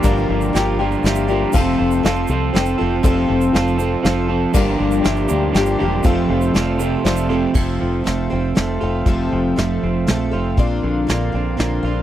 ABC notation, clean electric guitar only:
X:1
M:3/4
L:1/8
Q:1/4=120
K:F
V:1 name="Clean electric guitar"
[G,,D,F,B,FB] [F,B,FB] [F,B,FB] [G,,D,F,B,FB] [F,B,FB] [G,,D,F,B,FB] | [F,CFA] [CFA] [F,CFA] [F,CFA] [F,CFA] [F,CFA] | [F,CFA] [CFA] [F,CFA] [F,CFA] [F,CFA] [F,CFA] | [G,,D,F,B,DG] [F,B,DG] [F,B,DG] [G,,D,F,B,DG] [F,B,DG] [G,,D,F,B,DG] |
[F,,C,F,A,CF] [F,A,CF] [F,A,CF] [F,,C,F,A,CF] [F,A,CF] [F,,C,F,A,CF] | F,, F, A, C A, F | F,, F, A, C A, F | B,, D, B, C B, F |]